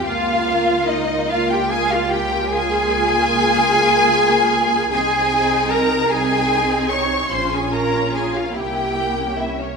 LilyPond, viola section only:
\new Staff \with { instrumentName = "Viola section" } { \time 12/8 \key des \lydian \tempo 4. = 49 << { f'4. f'4. f'2. | ees'4. ees'4. f'4. e'8. des'8. | } \\ { bes4. bes4. bes2. | c'4. c'4. des'4. bes4. | } >> }